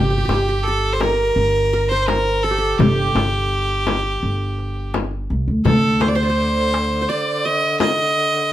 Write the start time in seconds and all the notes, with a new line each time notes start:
Already playing: G1 G4
0.10 G4
0.18 G4
0.25 G1 G4
0.29 darbuka tek, frame drum
0.34 G4
0.49 G4
0.63 A4
0.68 A4
0.93 C5
1.00 A#4, darbuka tek, frame drum
1.36 G1
1.73 A#4, darbuka ka
1.89 C5
2.02 C5
2.07 A#4, darbuka tek, frame drum
2.26 darbuka ka
2.43 A4
2.51 G4
2.58 A4
2.78 G1 G4, frame drum, darbuka dum
3.15 G1, darbuka tek, frame drum
3.87 darbuka tek, frame drum
4.23 G1
4.59 darbuka ka
4.77 darbuka ka
4.94 darbuka tek, frame drum
5.30 C2, darbuka ka
5.48 D2
5.65 D2 D3 A4, frame drum, darbuka dum
6.00 C5, darbuka tek, frame drum
6.08 D5
6.15 C5
6.23 D5
6.30 C5
6.37 darbuka ka
6.74 darbuka tek
7.02 C5
7.09 D5
7.45 D#5
7.63 darbuka ka
7.80 D#5, darbuka tek, frame drum
7.99 darbuka ka